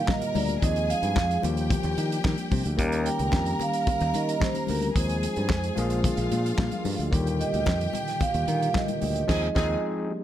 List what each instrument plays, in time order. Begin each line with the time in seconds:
Already playing: tonewheel organ A#2 G3 A#3 F4 G4, tine electric piano D3 D#3 G3 A#3 G4, vibraphone F5
0.08 string section A#4 A#5, vibraphone D#5, kick, snare, clap, high conga
0.22 closed hi-hat, high conga
0.35 fingered electric bass D2, vibraphone D5, open hi-hat, high conga
0.49 closed hi-hat
0.61 fingered electric bass D#2, tine electric piano F3 G#3 C4 D#4 G#4, tonewheel organ F3 G#3 C4 D#4 G#4, string section G#4 G#5, vibraphone D#5, kick, closed hi-hat
0.76 closed hi-hat
0.90 vibraphone F5, closed hi-hat
1.03 fingered electric bass G2, closed hi-hat
1.16 fingered electric bass F2, kick, snare, clap, high conga
1.31 closed hi-hat
1.42 fingered electric bass D#2, tine electric piano F3 G3 A#3 D4 G4, tonewheel organ G3 A#3 D4 G4, string section G4 G5, closed hi-hat, muted conga
1.57 closed hi-hat
1.70 kick, closed hi-hat, muted conga, low conga
1.83 fingered electric bass D#2, closed hi-hat
1.98 fingered electric bass D#3, closed hi-hat, muted conga
2.12 closed hi-hat
2.24 fingered electric bass D#3, kick, snare, clap, high conga
2.38 closed hi-hat
2.51 fingered electric bass C3, kick, open hi-hat, high conga
2.65 fingered electric bass D2, closed hi-hat
2.77 fingered electric bass D#2, tine electric piano D#3 G3 A#3 C#4 G4, tonewheel organ D#3 C#4, string section A#4 A#5, kick, closed hi-hat
2.92 closed hi-hat
3.06 vibraphone G5, closed hi-hat, muted conga
3.19 fingered electric bass C#2, closed hi-hat
3.32 fingered electric bass F2, kick, snare, clap, high conga
3.46 closed hi-hat
3.60 vibraphone F5, closed hi-hat, muted conga, low conga
3.73 closed hi-hat
3.87 kick, closed hi-hat, muted conga, low conga
4.00 fingered electric bass D#2, closed hi-hat
4.14 fingered electric bass D#3, vibraphone D#5, closed hi-hat, muted conga
4.29 closed hi-hat
4.40 vibraphone C5, kick, snare, clap, high conga
4.54 closed hi-hat, high conga
4.67 fingered electric bass D2, vibraphone A#4, open hi-hat, high conga
4.82 closed hi-hat
4.95 fingered electric bass D#2, tine electric piano F3 G#3 C4 D#4 G#4, tonewheel organ F3 G#3 C4 D#4 G#4, string section G#4 G#5, vibraphone C5, kick, closed hi-hat
5.09 closed hi-hat
5.23 closed hi-hat, muted conga
5.36 fingered electric bass G2, closed hi-hat
5.49 fingered electric bass F2, kick, snare, clap, high conga
5.64 closed hi-hat
5.76 fingered electric bass A#1, tine electric piano F3 G#3 A#3 D4 G#4, tonewheel organ G#3 A#3 F4, string section F4 F5, closed hi-hat, muted conga
5.90 closed hi-hat
6.04 kick, closed hi-hat, muted conga, low conga
6.17 fingered electric bass A#1, closed hi-hat
6.31 fingered electric bass A#2, closed hi-hat, muted conga
6.46 closed hi-hat
6.58 fingered electric bass A#2, kick, snare, clap, high conga
6.71 closed hi-hat, high conga
6.85 fingered electric bass G2, open hi-hat, high conga
6.99 fingered electric bass D2, closed hi-hat
7.10 fingered electric bass D#2, tonewheel organ A#2 G3 A#3 G4, tine electric piano D3 D#3 G3 A#3 G4, string section G4 G5, kick, closed hi-hat
7.27 closed hi-hat
7.40 vibraphone D#5, closed hi-hat, muted conga
7.54 fingered electric bass D2, closed hi-hat
7.66 fingered electric bass F2, kick, snare, clap, high conga
7.81 closed hi-hat
7.93 vibraphone G5, closed hi-hat, muted conga, low conga
8.08 snare, closed hi-hat
8.21 vibraphone F5, kick, closed hi-hat, muted conga, low conga
8.34 fingered electric bass D#2, closed hi-hat
8.47 tine electric piano D3 D#3 G3 A#3 A#4, fingered electric bass D#3, closed hi-hat, muted conga
8.62 closed hi-hat
8.74 vibraphone D#5, kick, snare, clap, high conga
8.88 closed hi-hat, high conga
9.01 fingered electric bass D2, open hi-hat, high conga
9.16 closed hi-hat
9.27 fingered electric bass D#2, tine electric piano F3 G#3 C4 D#4 G#4, tonewheel organ F3 G#3 C4 D#4 G#4, string section G#4 G#5, vibraphone D#5, kick, snare, crash
9.55 fingered electric bass D#2, tine electric piano F3 G#3 C4 D#4 G#4, string section G#4 G#5, kick, snare
10.10 tonewheel organ G3 A#3 D4 G4